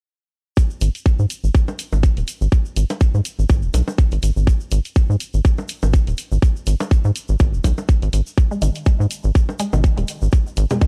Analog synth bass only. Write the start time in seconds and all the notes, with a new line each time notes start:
0.81 G#1
1.19 G#2
1.44 G#1
1.93 G#1
2.17 D#1
2.41 G#1
2.76 G#1
3.14 G#2
3.39 G#1
3.50 G#1
3.63 D#1
3.74 B1
4.12 G#1
4.23 G#1
4.36 G#1
4.72 G#1
5.10 G#2
5.34 G#1
5.83 G#1
6.07 D#1
6.32 G#1
6.67 G#1
7.05 G#2
7.29 G#1
7.40 G#1
7.54 D#1
7.64 B1
8.02 G#1
8.13 G#1
8.62 G#1
9.00 G#2
9.24 G#1
9.73 G#1
9.97 D#1
10.22 G#1
10.57 G#1